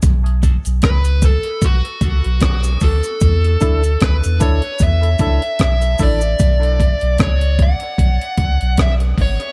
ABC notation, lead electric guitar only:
X:1
M:4/4
L:1/8
Q:"Swing 16ths" 1/4=75
K:Bm
V:1 name="Lead electric guitar"
z2 B A F2 F A- | A2 B c e2 e d- | d2 c f3 e c |]